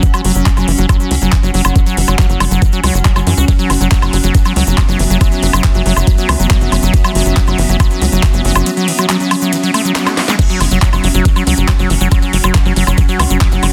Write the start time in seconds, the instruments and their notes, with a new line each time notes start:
Already playing: synth drone F#3 C#4, ambient pad C#4 F#4 F#5
0.03 acid bass E3, kick, closed hi-hat, shaker
0.14 acid bass F#3, closed hi-hat, high woodblock, shaker
0.25 analog synth bass F#1, acid bass F#3, open hi-hat
0.35 analog synth bass F#1, acid bass F#3, shaker
0.46 acid bass F#3, kick, clap, closed hi-hat, shaker
0.57 analog synth bass F#1, acid bass F#3, closed hi-hat, high woodblock, shaker
0.68 analog synth bass F#1, acid bass E3, open hi-hat
0.78 analog synth bass F#1, acid bass F#3, closed hi-hat, shaker
0.89 acid bass F#3, kick, closed hi-hat, high woodblock, shaker
1.00 acid bass F#3, closed hi-hat, shaker
1.11 analog synth bass C#2, acid bass F#3, open hi-hat
1.21 analog synth bass F#1, acid bass F#3, closed hi-hat, shaker
1.32 acid bass E3, kick, clap, closed hi-hat, high woodblock, shaker
1.43 analog synth bass F#1, acid bass F#3, closed hi-hat, shaker
1.54 analog synth bass F#1, acid bass F#3, open hi-hat
1.65 analog synth bass F#1, acid bass F#3, closed hi-hat, high woodblock, shaker
1.76 acid bass F#3, kick, closed hi-hat, shaker
1.86 acid bass F#3, closed hi-hat, shaker
1.97 analog synth bass F#1, acid bass E3, open hi-hat
2.07 analog synth bass F#1, acid bass F#3, closed hi-hat, high woodblock, shaker
2.19 acid bass F#3, kick, clap, closed hi-hat, shaker
2.30 analog synth bass F#1, acid bass F#3, closed hi-hat, shaker
2.40 analog synth bass F#1, acid bass F#3, open hi-hat, high woodblock
2.51 analog synth bass F#1, acid bass F#3, shaker
2.62 acid bass E3, kick, closed hi-hat, shaker
2.72 acid bass F#3, closed hi-hat, shaker
2.84 analog synth bass C#2, acid bass F#3, open hi-hat, high woodblock
2.94 analog synth bass F#1, acid bass F#3, closed hi-hat, shaker
3.05 acid bass F#3, kick, clap, closed hi-hat, shaker
3.16 analog synth bass F#1, acid bass F#3, closed hi-hat, high woodblock, shaker
3.27 analog synth bass F#2, acid bass E3, open hi-hat
3.37 analog synth bass C#2, acid bass F#4, shaker
3.48 acid bass F#3, synth drone B3, kick, closed hi-hat, ride, shaker
3.59 acid bass F#3, closed hi-hat, shaker
3.70 analog synth bass F#1, acid bass E3, open hi-hat, high woodblock
3.81 analog synth bass F#1, acid bass F#3, closed hi-hat, shaker
3.91 acid bass F#3, kick, clap, closed hi-hat, ride, shaker
4.02 analog synth bass F#1, acid bass F#3, closed hi-hat, high woodblock, shaker
4.13 analog synth bass F#1, acid bass F#3, open hi-hat
4.19 ambient pad E5
4.24 analog synth bass F#1, acid bass F#3, closed hi-hat, shaker
4.35 acid bass E3, kick, closed hi-hat, ride, shaker
4.45 acid bass F#3, closed hi-hat, high woodblock, shaker
4.56 analog synth bass C#2, acid bass F#3, open hi-hat
4.67 analog synth bass F#1, acid bass F#3, shaker
4.77 kick, clap, closed hi-hat, ride, high woodblock, shaker
4.89 analog synth bass F#1, acid bass F#3, closed hi-hat, shaker
4.99 analog synth bass F#1, acid bass E3, open hi-hat
5.10 analog synth bass F#1, acid bass F#3, closed hi-hat, shaker
5.21 acid bass F#3, kick, closed hi-hat, ride, high woodblock, shaker
5.32 acid bass F#3, closed hi-hat, shaker
5.43 analog synth bass F#1, acid bass F#3, open hi-hat
5.53 analog synth bass F#1, acid bass F#3, high woodblock, shaker
5.64 acid bass E3, kick, clap, closed hi-hat, ride, shaker
5.74 analog synth bass F#1, acid bass F#3, closed hi-hat, shaker
5.86 analog synth bass F#1, acid bass F#3, open hi-hat
5.96 analog synth bass F#1, closed hi-hat, high woodblock, shaker
6.07 acid bass F#3, kick, closed hi-hat, ride, shaker
6.18 acid bass F#3, closed hi-hat, shaker
6.29 analog synth bass C#2, acid bass E3, open hi-hat, high woodblock
6.40 analog synth bass F#1, acid bass F#3, closed hi-hat, shaker
6.50 acid bass F#3, kick, clap, closed hi-hat, ride, shaker
6.61 analog synth bass F#1, acid bass F#3, closed hi-hat, shaker
6.72 analog synth bass F#1, acid bass F#3, open hi-hat, high woodblock
6.83 analog synth bass F#1, acid bass F#3, closed hi-hat, shaker
6.94 acid bass E3, kick, closed hi-hat, ride, shaker
7.04 acid bass F#3, closed hi-hat, high woodblock, shaker
7.15 analog synth bass F#1, acid bass F#3, open hi-hat
7.26 analog synth bass F#1, acid bass F#3, closed hi-hat, shaker
7.37 acid bass F#3, kick, clap, closed hi-hat, ride, shaker
7.47 analog synth bass F#1, acid bass F#3, closed hi-hat, high woodblock, shaker
7.58 analog synth bass F#1, acid bass E3, open hi-hat
7.69 analog synth bass F#1, acid bass F#3, shaker
7.80 acid bass F#3, kick, closed hi-hat, ride, high woodblock, shaker
7.90 acid bass F#3, closed hi-hat, shaker
8.02 analog synth bass C#2, acid bass F#3, open hi-hat
8.12 analog synth bass F#1, acid bass F#3, closed hi-hat, shaker
8.23 kick, clap, closed hi-hat, ride, high woodblock, shaker
8.33 analog synth bass F#1, acid bass F#3, closed hi-hat, shaker
8.45 analog synth bass F#1, acid bass F#3, open hi-hat
8.55 analog synth bass F#1, acid bass F#3, high woodblock, shaker
8.66 acid bass F#3, closed hi-hat, ride, shaker
8.77 acid bass F#3, closed hi-hat, shaker
8.88 acid bass E3, open hi-hat
8.98 acid bass F#3, closed hi-hat, high woodblock, shaker
9.09 acid bass F#3, clap, closed hi-hat, ride, shaker
9.20 acid bass F#3, closed hi-hat, shaker
9.31 acid bass F#3, open hi-hat, high woodblock
9.41 acid bass F#3, closed hi-hat, shaker
9.53 acid bass E3, closed hi-hat, ride, swell, shaker
9.63 acid bass F#3, closed hi-hat, shaker
9.74 acid bass A3, open hi-hat, high woodblock
9.85 acid bass F#3, shaker
9.96 snare, clap, closed hi-hat, ride, shaker
10.07 acid bass A3, snare, closed hi-hat, high woodblock, shaker
10.17 acid bass F#3, snare, open hi-hat
10.28 acid bass G#3, snare, closed hi-hat, shaker
10.39 synth drone F#3 C#4, acid bass F#3, kick, closed hi-hat, crash, ride, shaker
10.50 acid bass F#3, closed hi-hat, shaker
10.61 analog synth bass F#1, acid bass E3, open hi-hat, high woodblock
10.71 analog synth bass F#1, acid bass F#3, closed hi-hat, shaker
10.82 acid bass F#3, kick, clap, closed hi-hat, ride, shaker
10.93 analog synth bass F#1, acid bass F#3, closed hi-hat, high woodblock, shaker
11.04 analog synth bass F#1, acid bass F#3, open hi-hat
11.10 ambient pad F#5
11.14 analog synth bass F#1, acid bass F#3, closed hi-hat, shaker
11.25 acid bass E3, kick, closed hi-hat, ride, shaker
11.36 acid bass F#3, closed hi-hat, high woodblock, shaker
11.47 analog synth bass C#2, acid bass F#3, open hi-hat
11.57 analog synth bass F#1, acid bass F#3, closed hi-hat, shaker
11.68 acid bass F#3, kick, clap, closed hi-hat, ride, high woodblock, shaker
11.79 analog synth bass F#1, acid bass F#3, closed hi-hat, shaker
11.90 analog synth bass F#1, acid bass E3, open hi-hat
12.01 analog synth bass F#1, acid bass F#3, shaker
12.11 acid bass F#3, kick, closed hi-hat, ride, high woodblock, shaker
12.22 acid bass F#3, closed hi-hat, shaker
12.33 analog synth bass F#1, acid bass F#3, open hi-hat
12.43 analog synth bass F#1, acid bass F#3, closed hi-hat, high woodblock, shaker
12.55 acid bass E3, kick, clap, closed hi-hat, ride, shaker
12.66 analog synth bass F#1, acid bass F#3, closed hi-hat, shaker
12.76 analog synth bass F#1, acid bass F#3, open hi-hat
12.87 analog synth bass F#1, acid bass F#3, high woodblock, shaker
12.98 acid bass F#3, kick, closed hi-hat, ride, shaker
13.09 acid bass F#3, closed hi-hat, shaker
13.19 analog synth bass C#2, acid bass E3, open hi-hat, high woodblock
13.30 analog synth bass F#1, acid bass F#3, closed hi-hat, shaker
13.41 acid bass F#3, kick, clap, closed hi-hat, ride, shaker
13.52 analog synth bass F#1, acid bass F#3, closed hi-hat, shaker
13.63 analog synth bass F#1, acid bass F#3, open hi-hat, high woodblock